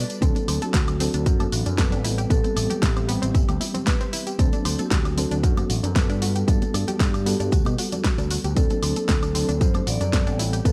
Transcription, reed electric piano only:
Already playing: G3 B3 F#4 A4
0.21 F#3 C4 D4 A4
0.99 F#3 C4 D4 A4
1.78 G3 B3 C4 A4
2.30 G3 B3 C4 A4
3.08 G3 B3 C4 G4
4.38 F#3 C4 D4 A4
5.17 F#3 C4 D4 A4
5.95 G3 B3 F#4 A4
6.47 G3 B3 F#4 A4
7.25 G3 B3 F#4 A4
8.55 F#3 C4 D4 A4
9.34 F#3 C4 D4 A4
10.13 G3 B3 C4 A4
10.64 G3 B3 C4 A4

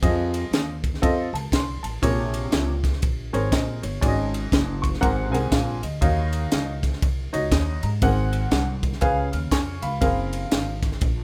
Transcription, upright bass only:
0.03 F2
0.51 D#2
1.03 F2
1.33 C#2
1.52 C2
1.84 A1
2.03 A#1
2.52 C#2
3.03 A#1
3.34 G#1
3.52 A#1
3.83 G1
4.03 G#1
4.52 F#1
5.03 G#1
5.33 C2
5.52 A#1
5.83 D2
6.02 D#2
6.53 C#2
7.03 C2
7.34 C#2
7.51 D#2
7.83 G#2
8.02 G#1
8.52 C2
9.02 C#2
9.33 D#2
9.51 F2
9.82 C#2
10.02 F#1
10.52 G#1
11.02 A#1

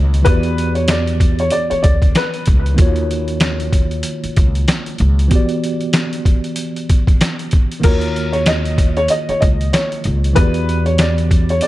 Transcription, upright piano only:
0.25 B4
0.75 C#5
0.90 D5
1.40 C#5
1.52 D5
1.70 C#5
1.83 D5
2.17 B4
7.84 A#4
8.33 C#5
8.48 D#5
8.97 C#5
9.10 D#5
9.29 C#5
9.40 D#5
9.73 C#5
10.36 B4
10.86 C#5
11.01 D5
11.50 C#5
11.62 D5

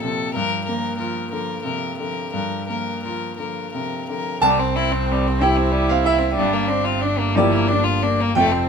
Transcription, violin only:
0.03 A4
0.35 A#4
0.66 A#4
0.98 A#4
1.32 A#4
1.63 A#4
1.98 A#4
2.34 A#4
2.68 A#4
3.04 A#4
3.38 A#4
3.73 A#4
4.10 A#4
4.44 G3
4.59 C4
4.76 E4
4.92 C4
5.12 G3
5.28 C4
5.42 E4
5.57 C4
5.72 G3
5.91 C4
6.05 E4
6.19 C4
6.34 G3
6.53 A#3
6.68 D4
6.85 F4
7.01 D4
7.19 A#3
7.36 G3
7.52 A#3
7.68 D4
7.84 F4
8.03 D4
8.21 A#3
8.38 A3
8.52 C4

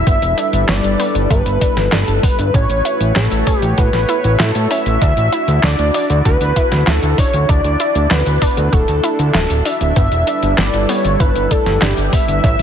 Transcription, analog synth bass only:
0.07 G1
0.22 E1
0.53 G1
0.69 G1
0.84 G1
1.15 G1
1.31 G1
1.46 G1
1.77 G1
1.92 G1
2.08 G1
2.39 G1
2.54 A1
2.70 A1
3.01 A1
3.16 A1
3.31 A1
3.62 A1
3.78 A2
3.93 A1
4.24 A1
4.40 A2
4.55 A2
4.86 A1
5.02 D2
5.17 A1
5.48 D2
5.63 D2
5.79 D2
6.10 D2
6.25 D2
6.41 D2
6.72 D2
6.87 D2
7.03 D2
7.34 D2
7.49 D2
7.64 D2
7.95 D2
8.11 D2
8.26 D2
8.57 D2
8.73 D1
8.88 D2
9.19 D2
9.35 D1
9.50 D1
9.81 D1
9.96 G1
10.12 E1
10.43 G1
10.58 G1
10.74 G1
11.05 G1
11.20 G1
11.36 G1
11.67 G1
11.82 G1
11.97 G1
12.28 G1
12.44 A1
12.59 A1

